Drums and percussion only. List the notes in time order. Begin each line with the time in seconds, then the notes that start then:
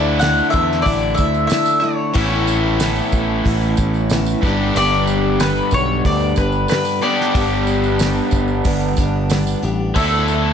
0.21 snare, open hi-hat, tambourine
0.38 tambourine
0.52 kick, tambourine
0.72 snare
0.86 kick, open hi-hat
1.17 kick, tambourine
1.34 tambourine
1.50 snare, open hi-hat, tambourine
1.66 tambourine
1.82 tambourine
2.15 kick, open hi-hat
2.47 tambourine
2.80 snare, open hi-hat, tambourine
2.96 tambourine
3.12 kick, tambourine
3.46 kick, open hi-hat
3.62 tambourine
3.77 kick, tambourine
3.94 tambourine
4.10 snare, open hi-hat, tambourine
4.26 tambourine
4.43 kick, tambourine
4.76 open hi-hat
5.07 tambourine
5.40 snare, open hi-hat, tambourine
5.56 tambourine
5.71 kick, tambourine
6.05 kick, open hi-hat
6.20 tambourine
6.36 kick, tambourine
6.52 tambourine
6.68 snare, open hi-hat, tambourine
6.85 tambourine
7.03 tambourine
7.21 snare
7.35 kick, open hi-hat, tambourine
7.51 tambourine
7.67 tambourine
7.84 tambourine
7.99 snare, open hi-hat, tambourine
8.15 tambourine
8.31 kick, tambourine
8.48 tambourine
8.64 kick, open hi-hat, tambourine
8.81 tambourine
8.97 kick, tambourine
9.30 snare, open hi-hat, tambourine
9.47 tambourine
9.63 tambourine
9.96 kick, open hi-hat
10.28 tambourine